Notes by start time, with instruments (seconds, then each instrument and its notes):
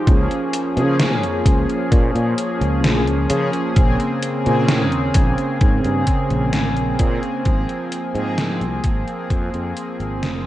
0.06 fretless electric bass C#2, analog polysynth F3 A#3 C#4 G#4, kick, closed hi-hat
0.31 closed hi-hat
0.53 closed hi-hat
0.76 fretless electric bass C#3, analog polysynth F3 A#3 C#4 G#4, closed hi-hat
1.00 snare, closed hi-hat
1.23 fretless electric bass F2, closed hi-hat
1.46 fretless electric bass C#2, kick, closed hi-hat
1.69 closed hi-hat
1.92 fretless electric bass A#2, kick, closed hi-hat
2.15 fretless electric bass A#2, closed hi-hat
2.38 closed hi-hat
2.61 fretless electric bass C#2, closed hi-hat
2.84 fretless electric bass A#1, snare, closed hi-hat
3.07 fretless electric bass C#2, closed hi-hat
3.30 fretless electric bass C#3, analog polysynth F3 A#3 C#4 G#4, closed hi-hat
3.53 closed hi-hat
3.76 fretless electric bass A#1, analog polysynth C#3 A#3 C4 G#4, kick, closed hi-hat
4.00 closed hi-hat
4.22 closed hi-hat
4.45 fretless electric bass A#2, analog polysynth C#3 A#3 C4 G#4, closed hi-hat
4.68 snare, closed hi-hat
4.92 fretless electric bass D#2, closed hi-hat
5.14 fretless electric bass A#1, kick, closed hi-hat
5.38 closed hi-hat
5.61 fretless electric bass G#2, kick, closed hi-hat
5.84 fretless electric bass G2, closed hi-hat
6.07 kick, closed hi-hat
6.30 fretless electric bass A#1, closed hi-hat
6.53 fretless electric bass G#1, snare, closed hi-hat
6.77 fretless electric bass A#1, closed hi-hat
6.99 fretless electric bass A#2, analog polysynth C#3 A#3 C4 G#4, kick, closed hi-hat
7.23 closed hi-hat
7.45 fretless electric bass G#1, analog polysynth F3 A#3 C4 G#4, kick, closed hi-hat
7.69 closed hi-hat
7.92 closed hi-hat
8.15 fretless electric bass G#2, analog polysynth F3 A#3 C4 G#4, closed hi-hat
8.38 snare, closed hi-hat
8.61 fretless electric bass C2, closed hi-hat
8.84 fretless electric bass G#1, kick, closed hi-hat
9.08 closed hi-hat
9.30 fretless electric bass F2, kick, closed hi-hat
9.54 fretless electric bass F2, closed hi-hat
9.77 closed hi-hat
10.00 fretless electric bass G#1, closed hi-hat
10.22 fretless electric bass F1, snare, closed hi-hat